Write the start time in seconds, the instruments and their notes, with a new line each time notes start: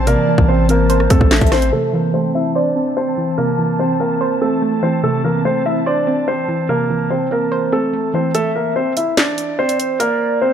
Already playing: 808-style bass A1, synth pluck E3 C4 C5, ambient pad E3 C4 A5
0.07 synth pluck C3, grand piano A#3 A#4, soft synth lead D5, closed hi-hat
0.28 synth pluck E3
0.38 808-style bass A1, kick
0.48 grand piano C4 C5, soft synth lead C5
0.69 grand piano A#3 A#4, synth pluck C4, closed hi-hat
0.90 synth pluck C5, soft synth lead C5, closed hi-hat
1.00 cross-stick
1.10 808-style bass E2, grand piano A3 A4, synth pluck C4, kick, closed hi-hat
1.21 808-style bass A1, kick
1.31 synth pluck A3, soft synth lead E5, snare, clap, closed hi-hat
1.36 closed hi-hat
1.41 808-style bass A1, kick, closed hi-hat
1.47 closed hi-hat
1.52 synth pluck E3, grand piano C4 C5, soft synth lead C5, cross-stick, snare, open hi-hat
1.62 closed hi-hat
1.72 synth pluck C3, ambient pad E3 C4 A5, grand piano A3 A4
1.93 synth pluck E3, grand piano A#3 A#4
2.14 synth pluck A3, grand piano C4 C5
2.34 synth pluck C4, grand piano E4 E5
2.55 grand piano D4 D5, synth pluck C5
2.76 synth pluck C4
2.97 grand piano C4 C5
3.18 synth pluck E3
3.38 synth pluck C3, grand piano A#3 A#4
3.59 synth pluck E3
3.79 grand piano C4 C5
4.00 grand piano A#3 A#4, synth pluck C4
4.21 synth pluck C5
4.42 grand piano A3 A4, synth pluck C4
4.62 synth pluck A3
4.83 synth pluck E3, grand piano C4 C5
5.03 synth pluck C3, grand piano A3 A4
5.24 synth pluck E3, grand piano A#3 A#4
5.45 synth pluck A3, grand piano C4 C5
5.66 synth pluck C4, grand piano E4 E5
5.86 grand piano D4 D5, synth pluck C5
6.07 synth pluck C4
6.28 grand piano C4 C5
6.48 synth pluck E3
6.69 synth pluck C3, grand piano A#3 A#4
6.90 synth pluck E3
7.10 grand piano C4 C5
7.31 grand piano A#3 A#4, synth pluck C4
7.52 synth pluck C5
7.72 grand piano A3 A4, synth pluck C4
7.93 synth pluck A3
8.14 synth pluck E3, grand piano C4 C5
8.35 grand piano A3 A4, soft synth lead E5, closed hi-hat
8.56 grand piano A#3 A#4
8.76 grand piano C4 C5
8.97 grand piano E4 E5, closed hi-hat
9.17 grand piano D4 D5, snare, clap, closed hi-hat
9.38 closed hi-hat
9.59 grand piano C4 C5, soft synth lead D5
9.69 closed hi-hat
9.79 soft synth lead C5, closed hi-hat
10.00 grand piano A#3 A#4, soft synth lead D5, closed hi-hat
10.42 grand piano C4 C5, soft synth lead C5